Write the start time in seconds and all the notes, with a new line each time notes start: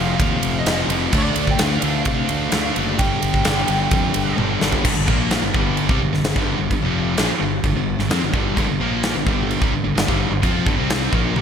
Already playing: F1 F2
0.00 C3 F3
0.12 F5
0.20 D#2 F2 C3 F3, kick, ride
0.42 F1, ride
0.59 D#5
0.66 F1 F2 C3 F3, snare, ride
0.88 F1 F2 C3 F3, ride
1.12 D2 D3 A3 D4, kick, crash
1.18 D5
1.36 D2, ride
1.47 G5, kick
1.59 D2 D3 A3 D4, snare, ride
1.63 F5
1.82 D2 D3 A3 D4, ride
2.05 C3 D3 A3 D4 F5, kick, ride
2.29 D2, ride
2.52 D2 D3 A3 D4, snare, ride
2.76 F#1 D3 A3 D4, ride
2.99 G1 G2 D3 G3 G5, kick, ride
3.22 G1, ride
3.34 kick
3.45 G1 G2 D3 G3, snare, ride
3.68 G1 G2 D3 G3, ride
3.91 F2 G2 D3 G3, kick, ride
4.14 G1, ride
4.37 G1 G2 D3 G3, high tom
4.61 G1 G2 D3 G3, snare
4.72 floor tom
4.85 G1 G2 D3, kick, crash
4.96 G1 G2 D3
5.07 A#1 A#2 F3 A#3, kick
5.31 snare, crash
5.42 G1 G2 D3
5.54 G1 G2 D3 G3, kick
5.77 crash
5.89 C2 C3 G3, kick
6.01 G1 G2 D3
6.12 G1 G2 D3, snare
6.24 G1 G2 D3, snare, crash
6.35 G1 G2 D3 G3, kick
6.58 G1 G2 D3
6.71 G1 G2 D3, kick, crash
6.81 F1 F2 C3 F3
7.17 A#1 A#2 F3, snare, crash
7.28 muted distorted electric guitar stroke, muted fingered electric bass stroke
7.39 G1 G2 D3
7.64 G1 G2 D3, kick, crash
7.75 G1 G2 D3
7.98 G1 G2 D3, snare
8.09 F2 F3 C4, snare, crash
8.21 G1 G2 D3
8.32 G1 G2 D3 G3, kick
8.55 G1 G2 D3, kick, crash
8.68 G1 G2 D3
8.80 A#1 A#2 F3 A#3
9.03 snare, crash
9.15 G1 G2 D3
9.26 G1 G2 D3 G3, kick
9.51 crash
9.61 C2 C3 G3, kick
9.73 G1 G2 D3
9.85 G1 G2 D3
9.96 G1 G2 D3, snare, crash
10.07 G1 G2 D3 G3, kick
10.30 G1 G2 D3
10.42 F2 F3 C4 F4, kick, crash
10.65 G1 G2 D3, kick
10.77 C2 C3 G3 C4
10.90 snare, crash
11.12 A#1 A#2 F3 A#3, kick
11.35 G1 G2 D3 G3, high tom